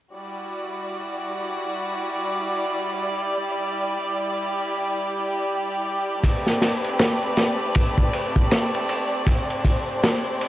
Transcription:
0.15 6.19 G3 medium
0.15 6.19 E4 medium
0.15 3.16 F#4 medium
0.15 6.19 D5 medium
3.20 10.48 G4 medium
6.24 10.48 A3 medium
6.24 10.48 C4 medium
6.24 9.25 B4 medium
6.24 10.48 D5 medium
6.24 kick medium
6.24 ride medium
6.47 snare soft
6.62 snare soft
6.62 ride medium
6.84 ride soft
6.99 snare loud
6.99 ride medium
7.37 snare medium
7.37 ride medium
7.75 kick loud
7.75 ride medium
7.98 kick medium
8.13 ride medium
8.36 kick medium
8.51 snare loud
8.51 ride medium
8.75 ride soft
8.89 ride medium
9.27 10.48 C5 medium
9.27 kick medium
9.27 ride medium
9.50 ride soft
9.65 kick medium
9.65 ride medium
10.04 snare loud
10.04 ride medium
10.41 ride medium

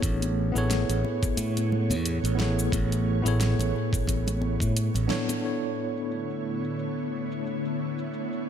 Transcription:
0.00 0.51 A1 medium
0.00 5.39 A2 medium
0.00 0.50 B3 medium
0.00 0.51 E4 medium
0.00 0.52 G#4 medium
0.00 0.52 A4 medium
0.00 0.53 C#5 medium
0.00 5.39 C#5 medium
0.00 kick loud
0.00 closed hi-hat medium
0.00 shaker medium
0.04 5.39 B3 medium
0.22 closed hi-hat soft
0.22 muted conga medium
0.22 shaker soft
0.52 0.84 A1 medium
0.52 2.34 B3 medium
0.52 2.35 E4 medium
0.52 2.35 G#4 medium
0.56 2.36 A4 medium
0.56 2.37 C#5 loud
0.56 high conga medium
0.56 shaker medium
0.71 snare medium
0.71 closed hi-hat medium
0.71 muted conga medium
0.71 shaker medium
0.89 1.02 A1 medium
0.89 closed hi-hat soft
0.89 shaker soft
1.04 muted conga medium
1.23 kick loud
1.23 closed hi-hat soft
1.23 shaker medium
1.37 1.91 A2 medium
1.37 closed hi-hat medium
1.37 shaker medium
1.57 closed hi-hat soft
1.57 muted conga soft
1.57 high conga medium
1.57 shaker soft
1.72 low conga medium
1.90 2.18 E2 medium
1.90 closed hi-hat soft
1.90 muted conga medium
1.90 shaker medium
2.06 closed hi-hat medium
2.06 shaker soft
2.24 2.69 A1 medium
2.24 closed hi-hat soft
2.24 shaker soft
2.35 3.19 B3 medium
2.35 3.20 E4 medium
2.35 3.21 G#4 medium
2.40 3.22 A4 medium
2.40 3.22 C#5 medium
2.40 snare medium
2.40 muted conga medium
2.40 high conga medium
2.59 shaker medium
2.72 3.21 A1 loud
2.72 kick loud
2.72 closed hi-hat medium
2.72 muted conga medium
2.72 shaker medium
2.92 closed hi-hat soft
2.92 shaker soft
3.22 3.53 A1 medium
3.22 5.04 B3 medium
3.22 5.04 E4 medium
3.22 5.05 G#4 medium
3.22 high conga medium
3.26 5.06 A4 medium
3.26 5.07 C#5 loud
3.26 closed hi-hat soft
3.26 muted conga medium
3.26 shaker medium
3.41 snare medium
3.41 closed hi-hat medium
3.41 shaker medium
3.59 3.72 A1 medium
3.59 closed hi-hat soft
3.59 muted conga medium
3.59 shaker soft
3.93 kick loud
3.93 closed hi-hat soft
3.93 shaker medium
4.07 4.56 A1 medium
4.07 kick medium
4.07 closed hi-hat medium
4.07 muted conga medium
4.07 shaker medium
4.27 closed hi-hat soft
4.27 high conga medium
4.27 low conga medium
4.27 shaker soft
4.42 muted conga medium
4.60 4.88 A2 medium
4.60 kick medium
4.60 closed hi-hat soft
4.60 shaker medium
4.77 closed hi-hat medium
4.77 shaker medium
4.94 5.07 A1 medium
4.94 closed hi-hat soft
4.94 muted conga medium
4.94 shaker soft
5.07 5.38 B3 medium
5.07 5.40 D4 medium
5.07 5.42 E4 medium
5.07 5.43 A4 medium
5.07 5.44 C#5 medium
5.07 snare medium
5.07 high conga medium
5.29 closed hi-hat soft
5.29 muted conga medium
5.29 shaker medium
5.40 8.49 B3 medium
5.40 8.49 D4 medium
5.40 8.49 E4 medium
5.44 8.49 D3 medium
5.44 8.49 A3 medium
5.44 8.49 B3 medium
5.44 8.49 E4 medium
5.44 8.49 A4 medium
5.44 8.49 C#5 medium
5.44 shaker soft
5.63 shaker soft
5.97 shaker medium
6.11 shaker soft
6.30 shaker soft
6.64 shaker medium
6.79 shaker soft
6.98 shaker soft
7.32 shaker medium
7.46 shaker soft
7.65 shaker soft
7.99 shaker medium
8.14 shaker soft
8.33 shaker soft

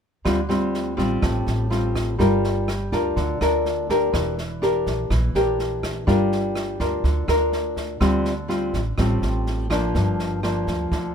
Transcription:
0.25 0.94 D2 medium
0.25 1.20 D3 soft
0.25 0.39 G3 soft
0.25 0.40 C4 soft
0.25 0.40 F4 medium
0.25 kick soft
0.25 cross-stick medium
0.25 snare soft
0.49 0.94 G3 soft
0.49 0.94 C4 medium
0.49 0.94 F4 medium
0.49 snare soft
0.74 snare soft
0.97 1.21 A1 medium
0.97 1.66 G3 medium
0.97 1.67 C4 soft
0.97 1.67 F4 medium
0.97 kick soft
0.97 snare soft
1.22 1.45 A1 medium
1.22 2.17 A2 soft
1.22 kick soft
1.22 cross-stick medium
1.22 snare soft
1.46 2.15 A1 medium
1.46 snare soft
1.70 2.15 G3 soft
1.70 2.15 C4 soft
1.70 2.16 F4 soft
1.70 snare soft
1.95 kick soft
1.95 cross-stick medium
1.95 snare soft
2.18 2.88 G1 medium
2.18 3.14 G3 soft
2.18 2.67 D4 soft
2.18 2.68 F4 medium
2.18 2.68 A#4 medium
2.18 kick soft
2.18 snare soft
2.44 snare soft
2.68 cross-stick soft
2.68 snare soft
2.92 3.15 D2 medium
2.92 3.37 D4 soft
2.92 3.37 F4 medium
2.92 3.37 A#4 medium
2.92 kick soft
2.92 snare soft
3.16 3.39 D2 medium
3.16 4.11 D3 soft
3.16 kick soft
3.16 snare soft
3.41 4.10 D2 medium
3.41 3.86 D4 medium
3.41 3.86 F4 medium
3.41 3.86 A#4 medium
3.41 cross-stick medium
3.41 snare soft
3.65 snare soft
3.89 4.34 D4 soft
3.89 4.34 G4 soft
3.89 4.35 A#4 medium
3.89 kick soft
3.89 snare soft
4.13 4.82 E1 medium
4.13 5.08 E3 soft
4.13 kick medium
4.13 cross-stick medium
4.13 snare soft
4.38 snare soft
4.62 5.10 D4 soft
4.62 5.11 G4 soft
4.62 5.11 A#4 medium
4.62 snare soft
4.86 5.09 A#1 medium
4.86 kick soft
4.86 snare soft
5.10 5.33 A#1 medium
5.10 6.05 E3 soft
5.10 kick soft
5.10 cross-stick soft
5.10 snare soft
5.35 6.03 A#1 medium
5.35 6.04 D4 medium
5.35 6.04 G4 medium
5.35 6.04 A#4 medium
5.35 snare soft
5.59 snare soft
5.83 kick soft
5.83 cross-stick medium
5.83 snare soft
6.07 6.76 G1 medium
6.07 7.02 G3 soft
6.07 6.76 D4 soft
6.07 6.76 F4 medium
6.07 6.76 A#4 medium
6.07 kick medium
6.07 snare soft
6.32 snare soft
6.55 cross-stick soft
6.55 snare soft
6.80 7.03 D2 medium
6.80 7.25 D4 soft
6.80 7.25 F4 medium
6.80 7.25 A#4 soft
6.80 kick soft
6.80 snare soft
7.04 7.27 D2 medium
7.04 7.99 D3 soft
7.04 kick medium
7.04 snare soft
7.28 7.97 D2 medium
7.28 7.97 D4 soft
7.28 7.97 F4 medium
7.28 7.98 A#4 medium
7.28 cross-stick medium
7.28 snare soft
7.52 snare soft
7.77 kick soft
7.77 snare soft
8.00 8.70 D2 medium
8.00 8.95 D3 soft
8.00 8.32 G3 medium
8.00 8.32 C4 medium
8.00 8.32 F4 soft
8.00 kick medium
8.00 cross-stick soft
8.00 snare soft
8.25 snare soft
8.48 8.80 G3 soft
8.48 8.80 C4 soft
8.48 8.81 F4 soft
8.48 snare soft
8.73 8.96 A1 medium
8.73 kick soft
8.73 snare soft
8.98 9.21 A1 medium
8.98 9.93 A2 soft
8.98 9.67 G3 soft
8.98 9.67 C4 soft
8.98 9.67 F4 medium
8.98 kick soft
8.98 cross-stick soft
8.98 snare soft
9.22 9.91 A1 medium
9.22 snare soft
9.46 snare soft
9.70 10.39 F3 medium
9.70 10.39 A#3 soft
9.70 10.40 D4 medium
9.70 kick soft
9.70 cross-stick medium
9.70 snare soft
9.94 10.63 G1 medium
9.94 10.89 G2 soft
9.94 kick medium
9.94 snare soft
10.19 snare soft
10.43 11.12 F3 soft
10.43 11.12 A#3 soft
10.43 11.12 D4 soft
10.43 cross-stick soft
10.43 snare soft
10.67 10.90 D2 medium
10.67 kick soft
10.67 snare soft
10.92 11.14 D2 medium
10.92 11.15 D3 soft
10.92 kick medium
10.92 snare soft

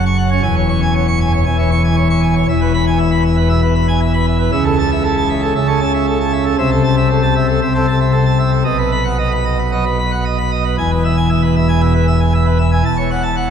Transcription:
0.00 0.39 F#1 medium
0.00 0.39 F#2 medium
0.06 0.17 C#6 medium
0.18 0.29 F#5 medium
0.31 0.42 C#4 medium
0.31 0.42 C#5 medium
0.42 1.44 E1 medium
0.42 1.44 E2 medium
0.42 0.54 G#5 medium
0.56 0.68 C#5 medium
0.69 0.80 C#6 medium
0.82 0.93 G#5 medium
0.95 1.06 C#5 medium
1.08 1.19 C#6 medium
1.20 1.32 G#5 medium
1.33 1.45 C#5 medium
1.46 2.45 E1 medium
1.46 2.45 E2 medium
1.46 1.57 G#5 medium
1.58 1.70 E3 medium
1.58 1.70 C#5 medium
1.71 1.83 C#6 medium
1.84 1.95 G#5 medium
1.97 2.08 C#5 medium
2.10 2.21 C#6 medium
2.23 2.34 G#5 medium
2.36 2.46 C#5 medium
2.49 4.49 E1 medium
2.49 4.49 E2 medium
2.49 2.60 E5 medium
2.61 2.72 B4 medium
2.74 2.85 B5 loud
2.87 2.98 G#5 medium
2.99 3.10 E5 medium
3.12 3.23 B5 medium
3.25 3.36 E5 medium
3.37 3.48 B4 medium
3.49 3.61 B2 medium
3.49 3.61 E5 medium
3.62 3.74 B4 medium
3.75 3.87 B5 medium
3.88 4.00 G#5 medium
4.00 4.12 E5 medium
4.14 4.25 B5 medium
4.26 4.38 E5 medium
4.39 4.50 B4 medium
4.52 5.53 C#2 loud
4.52 5.53 C#3 medium
4.52 4.64 E5 medium
4.65 4.77 A4 medium
4.79 4.90 A5 loud
4.91 5.03 E5 medium
5.04 5.15 A4 medium
5.17 5.28 A5 medium
5.29 5.41 E5 medium
5.42 5.54 A4 medium
5.55 6.55 C#2 medium
5.55 6.55 C#3 medium
5.55 5.67 E5 medium
5.68 5.79 C#4 medium
5.68 5.79 A4 medium
5.80 5.92 A5 medium
5.94 6.05 E5 medium
6.07 6.18 A4 medium
6.21 6.32 A5 medium
6.33 6.44 E5 medium
6.46 6.56 A4 medium
6.58 7.60 C2 medium
6.58 7.60 C3 loud
6.58 6.70 E5 medium
6.71 6.82 A4 medium
6.84 6.95 A5 loud
6.97 7.08 E5 medium
7.10 7.21 A4 medium
7.23 7.34 A5 medium
7.35 7.46 E5 medium
7.48 7.60 A4 medium
7.62 8.63 C2 medium
7.62 8.63 C3 medium
7.62 7.73 E5 medium
7.75 7.86 C4 medium
7.75 7.86 A4 medium
7.87 7.99 A5 medium
8.00 8.12 E5 medium
8.12 8.24 A4 medium
8.26 8.37 A5 medium
8.39 8.51 E5 medium
8.52 8.63 A4 medium
8.64 10.74 B1 medium
8.64 10.75 B2 medium
8.64 8.77 D#5 medium
8.78 8.91 B4 medium
8.92 9.04 B5 medium
9.05 9.17 F#5 medium
9.18 9.31 D#5 medium
9.32 9.44 B5 medium
9.45 9.57 D#5 medium
9.59 9.71 B4 medium
9.72 9.84 F#3 medium
9.72 9.84 D#5 medium
9.86 9.98 B4 medium
9.99 10.11 B5 medium
10.11 10.24 F#5 medium
10.25 10.37 D#5 medium
10.38 10.51 B5 medium
10.51 10.64 D#5 medium
10.64 10.76 B4 medium
10.78 12.82 E1 medium
10.78 12.82 E2 medium
10.78 10.90 G#5 loud
10.91 11.03 B4 medium
11.04 11.16 E5 medium
11.17 11.29 G#5 medium
11.29 11.42 E5 medium
11.42 11.55 B4 medium
11.56 11.68 E5 medium
11.68 11.81 G#5 medium
11.81 11.93 B2 medium
11.81 11.93 E5 medium
11.94 12.06 B4 medium
12.07 12.19 E5 medium
12.20 12.32 G#5 medium
12.34 12.46 E5 medium
12.46 12.58 B4 medium
12.59 12.71 E5 medium
12.72 12.83 G#5 medium
12.85 13.50 E1 medium
12.85 13.50 E2 medium
12.85 12.97 A5 loud
12.97 13.10 C#5 medium
13.11 13.23 F#5 medium
13.23 13.35 A5 medium
13.37 13.48 F#5 medium

